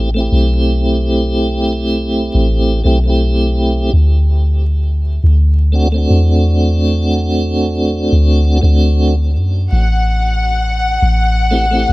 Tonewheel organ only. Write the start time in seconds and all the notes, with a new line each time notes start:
Already playing: E4 G4
0.14 A3 C4
0.18 E4 G4
2.84 A3 C4 E4 G4
3.04 A3 C4 E4
3.10 G4
5.72 A3 C4 D4 F#4
5.92 A3 C4 D4
5.98 F#4
8.61 A3 C4 D4 F#4
11.51 A3 C4 E4 G4
11.71 A3 C4
11.75 E4 G4